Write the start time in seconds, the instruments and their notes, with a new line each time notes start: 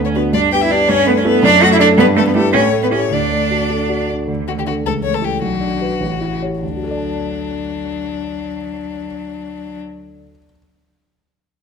Already playing: grand piano D2 A3
0.05 cello C#4, violin C#5
0.14 cello B3, grand piano D4 F#4, violin B4
0.33 grand piano G2, cello D4, violin D5
0.52 grand piano B3, cello G4, violin G5
0.61 cello E4, violin E5
0.70 grand piano D4 G4, cello D4, violin D5
0.88 grand piano G2, cello C#4, violin C#5
1.06 grand piano A3, cello B3, violin B4
1.17 cello C#4, violin C#5
1.25 cello B3, grand piano E4 A4, violin B4
1.43 grand piano F#2, cello D4, violin D5
1.62 grand piano A3, cello F#4, violin F#5
1.72 cello E4, violin E5
1.79 grand piano D4 A4, cello D4, violin D5
1.98 grand piano G2, cello B3, violin B4
2.16 cello A3, grand piano B3, violin A4
2.27 cello B3, violin B4
2.34 cello A3, grand piano E4 G4, violin A4
2.53 grand piano A2, cello C#4, violin C#5
2.73 grand piano A3
2.83 cello B3, violin B4
2.91 cello C#4, grand piano E4 G4, violin C#5
3.11 grand piano D2, cello D4, violin D5
3.30 grand piano A3
3.51 grand piano F#4
3.70 grand piano A4
3.89 grand piano F#4
4.09 grand piano D4
4.28 grand piano D2, cello D3
4.48 grand piano A3, violin F#4
4.59 violin G4
4.66 grand piano D4 A4, violin F#4
4.85 grand piano C#2, cello E3, violin A4
5.04 grand piano A3, violin C#5
5.14 violin A4
5.22 grand piano E4 A4, violin G4
5.42 grand piano B1, cello D3, violin F#4
5.60 grand piano D4
5.81 grand piano F#4 B4
6.00 grand piano A1, cello C#3
6.21 grand piano E4
6.42 grand piano G4 C#5
6.61 grand piano D2, cello F#3, violin D4
6.69 grand piano D3
6.76 grand piano F#4
6.83 grand piano A4
6.91 grand piano D5
6.97 grand piano A5